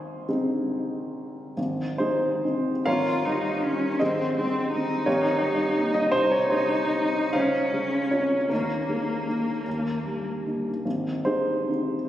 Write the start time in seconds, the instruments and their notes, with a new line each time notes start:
Already playing: grand piano G#1 C5 G#5 C6
0.29 grand piano G#3 C4 D#4
1.57 grand piano G#1
1.98 grand piano G#3 D#4 G#4 C5
2.44 grand piano C4 D#4
2.86 grand piano G#1 A#4 C#5 F5, cello F4
3.25 grand piano G3, cello D#4
3.63 cello C#4, grand piano C#4 D#4
3.99 grand piano G#1 G#4 C5 D#5, cello C4
4.36 grand piano G#3, cello C4
4.72 grand piano C4 D#4, cello D#4
5.06 grand piano G#1 G4 A#4 C#5
5.42 grand piano G3
5.77 grand piano A#3 D#4
5.94 grand piano D#5
6.12 grand piano C2 C5, cello D#4
6.32 grand piano C#5
6.50 grand piano G#3 D#4 G#4 C5
6.93 grand piano C4 D#4
7.33 grand piano C#2 C5 C#5 F5, cello C#4
7.74 grand piano G#3
8.11 grand piano C4 F4 C#5
8.49 grand piano D#2 D#4 A#4, cello A#3
8.89 grand piano G#3
9.27 grand piano A#3 D#4
9.66 grand piano D#2
10.06 grand piano G3
10.46 grand piano A#3 D#4
10.85 grand piano G#1
11.25 grand piano G#3 D#4 G#4 C5
11.69 grand piano C4 D#4